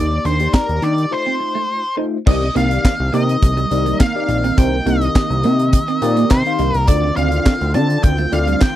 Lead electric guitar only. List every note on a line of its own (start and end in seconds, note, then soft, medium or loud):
0.00 0.23 D5 loud
0.26 0.54 C5 medium
0.54 0.84 A#4 medium
0.83 1.13 D5 medium
1.12 1.95 C5 medium
2.28 2.57 D#5 medium
2.57 3.14 F5 loud
3.15 4.00 D#5 loud
4.01 4.60 F5 loud
4.58 4.88 G5 loud
4.87 6.35 D#5 loud
6.31 6.77 C5 medium
6.77 6.90 A#4 medium
6.88 7.16 D5 medium
7.17 7.71 F5 loud
7.75 8.03 A5 loud
8.04 8.33 G5 loud
8.33 8.63 F5 medium
8.62 8.76 G5 loud